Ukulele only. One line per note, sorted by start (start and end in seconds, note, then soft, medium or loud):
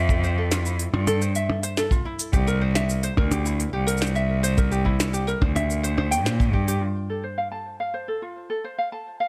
0.00 0.22 E5 medium
0.24 0.37 C5 medium
0.38 0.50 A4 medium
0.52 0.64 F4 medium
0.65 0.92 E4 medium
0.94 1.06 F4 medium
1.07 1.21 A4 loud
1.21 1.34 C5 medium
1.36 1.62 E5 medium
1.63 1.77 C5 medium
1.78 1.90 A4 medium
1.91 2.04 F4 medium
2.05 2.32 E4 medium
2.33 2.46 G4 medium
2.47 2.61 A#4 loud
2.61 2.74 C5 medium
2.75 3.02 E5 medium
3.03 3.17 C5 loud
3.17 3.30 A#4 medium
3.32 3.44 G4 medium
3.45 3.72 E4 medium
3.73 3.86 G4 medium
3.87 4.00 A#4 loud
4.01 4.14 C5 medium
4.15 4.42 E5 medium
4.43 4.57 C5 loud
4.57 4.70 A#4 medium
4.71 4.84 G4 medium
4.85 5.12 E4 medium
5.13 5.26 G4 medium
5.27 5.41 A#4 loud
5.41 5.54 C5 medium
5.55 5.82 E5 medium
5.83 5.96 C5 loud
5.97 6.10 C5 medium
6.11 6.25 G5 medium
6.25 6.39 C5 medium
6.53 6.66 G4 medium
6.68 6.81 G4 medium
6.81 7.08 F4 medium
7.10 7.22 A4 medium
7.23 7.37 C5 medium
7.38 7.51 F5 medium
7.52 7.79 A5 medium
7.80 7.93 F5 medium
7.94 8.07 C5 medium
8.08 8.21 A4 medium
8.22 8.49 F4 medium
8.50 8.63 A4 medium
8.64 8.78 C5 medium
8.78 8.91 F5 medium
8.92 9.19 A5 medium
9.20 9.28 F5 medium